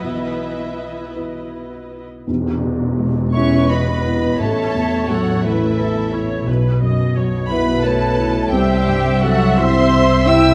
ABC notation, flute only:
X:1
M:6/8
L:1/8
Q:3/8=57
K:Alyd
V:1 name="Flute"
z6 | z3 e d2 | e2 A A3 | z3 e c2 |
=c2 A e2 =g |]